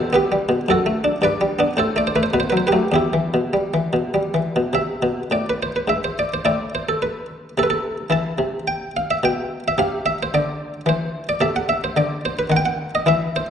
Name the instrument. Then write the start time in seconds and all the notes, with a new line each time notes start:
harpsichord
Already playing: B2 A4
0.13 B3 G4 B4
0.32 G3
0.49 B2
0.69 F#2 F#4 A4
0.86 A3
1.04 D4
1.22 G2 B4 D5
1.41 G3
1.59 B3 D4
1.77 A2 A4 C5
1.96 A3 D5
2.07 C5
2.16 A3 B4
2.23 C5
2.34 B2 B4
2.40 C5
2.50 F#3 B4
2.57 C5
2.67 G4 B4
2.72 F#3 A3
2.92 E2 E4 G4
3.13 E3
3.34 B2
3.53 G3
3.74 E3
3.93 B2
4.14 G3
4.34 E3
4.56 B2
4.73 C3 E5
5.03 B2
5.31 A2 D5
5.50 B4
5.63 C5
5.76 B4
5.88 G#2 E5
6.04 C5
6.19 D5
6.34 C5
6.45 A2 E4 D5
6.75 C5
6.89 A4
7.02 B4
7.58 C3 A4
7.63 B4
7.70 A4
8.10 E3 E4 A5
8.38 C3
8.68 G5
8.97 F5
9.11 E5
9.23 B2 G5
9.68 E5
9.78 C3 G4 F5
10.06 E5
10.23 C5
10.34 D3 D5
10.86 E3 C5
11.29 D5
11.41 C3 A4 E5
11.56 F#5
11.69 E5
11.84 C5
11.97 D3 D5
12.25 C5
12.39 B4
12.50 D#3 F#5
12.57 G5
12.66 F#5
12.95 D#5
13.06 E3 E4 E5
13.36 C5